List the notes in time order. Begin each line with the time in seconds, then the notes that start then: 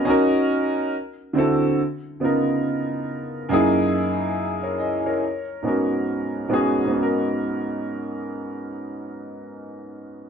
0.05 C#4 D#4 F#4
0.10 A#4
1.33 D3 C4 E4 F#4
1.38 A4
2.20 C#3 B3 D#4 F4
2.25 A#4
3.49 F#2 A#3 D#4 E4
3.53 G#4
4.63 A#4 C#5
4.79 D#5
5.06 A#4 C#5
5.62 G#2 B3 C#4 F#4
5.68 A#4
6.48 G#2 B3 C#4
6.52 F#4 G#4
6.84 G#2 B3
6.91 C#4 D#4
6.99 F#4 A#4